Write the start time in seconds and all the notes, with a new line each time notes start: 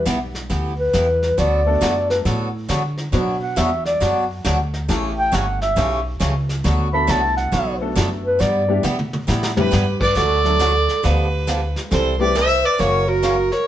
Already playing: G3 B3 E4 G4 B4
0.06 B1 E3 B3 E4 G4, kick, snare, hi-hat pedal
0.35 snare
0.50 D2 E3 B3 E4 G4, brush sweep, kick, snare
0.78 B4
0.93 E2 E3 B3 E4 G4, kick, snare, hi-hat pedal
1.22 snare
1.37 D2 D3 F#3 B3 F#4 A4 D5, brush sweep, kick, snare
1.66 A3 B3 D4 F#4 A4
1.81 F#2 D3 F#3 B3 F#4 A4, kick, snare, hi-hat pedal
2.10 B4, snare
2.25 A2 D3 F#3 B3 F#4 A4, brush sweep, kick, snare
2.69 D3 F#3 B3 F#4 A4, kick, snare, hi-hat pedal
2.98 snare
3.12 B2 F#3 B3 D4 F#4 B4, brush sweep, kick, snare
3.42 F#5
3.56 E2 B2 F#3 B3 D4 F#4 E5, kick, snare, hi-hat pedal
3.85 D5, snare
4.00 F#2 B2 F#3 B3 D4 F#4, brush sweep, kick, snare
4.44 D2 B2 F#3 B3 D4 F#4, kick, snare, hi-hat pedal
4.74 snare
4.88 A1 C#3 E3 A3 C#4 E4 G4 A4, brush sweep, kick, snare
5.18 G5
5.32 G1 C#3 E3 A3 C#4 G4 F#5, kick, snare, hi-hat pedal
5.61 E5, snare
5.76 B1 C#3 E3 A3 C#4 G4, brush sweep, kick, snare
6.20 C#2 C#3 E3 A3 C#4 G4, kick, snare, hi-hat pedal
6.49 snare
6.64 D2 D3 F#3 B3 F#4 A4, brush sweep, kick, snare
6.93 A3 B3 D4 F#4 A4 B5
7.07 C2 D3 F#3 B3 F#4 A4 A5, kick, snare, hi-hat pedal
7.37 F#5, snare
7.52 B1 D3 F#3 B3 F#4 A4, brush sweep, kick, snare
7.81 A3 B3 D4 F#4 A4
7.95 F#2 D3 F#3 B3 F#4 A4, kick, snare, hi-hat pedal
8.26 B4
8.39 G2 G3 B3 E4 G4 D5, brush sweep, kick, snare
8.68 G3 B3 D4 E4 G4
8.83 B2 G3 B3 E4 G4, hi-hat pedal, mid tom
8.99 mid tom
9.13 mid tom
9.27 A2 G3 B3 E4 G4, snare
9.43 snare
9.57 G3 B3 D4 E4 G4 B4, floor tom
9.71 G2 G3 B3 E4 G4, snare, hi-hat pedal
10.01 B4 D5, kick, crash
10.15 D2 D3 F#3 A3 D4 F#4 A4 D5, brush sweep, kick, snare
10.44 F#3 A3 D4 F#4 A4, snare
10.59 D3 F#3 A3 D4 F#4, kick, snare, hi-hat pedal
10.89 snare
11.03 D2 D3 F3 B3 D4 G4 B4, brush sweep, kick, snare
11.47 D3 F3 B3 D4 G4, kick, snare, hi-hat pedal
11.76 snare
11.91 C2 C3 E3 G3 C4 E4 A4 C5, brush sweep, kick, snare
12.20 G3 A3 C4 E4 G4 B4 D5
12.35 C3 E3 G3 C4 E4 A4 C5 E5, kick, snare, hi-hat pedal
12.64 B4 D5
12.78 F#1 C#3 E3 A#3 C#4 F#4 A#4 C#5, brush sweep, kick, snare
13.08 F#4 A#4
13.23 C#3 E3 A#3 C#4 F#4, kick, snare, hi-hat pedal
13.52 A#4 C#5, snare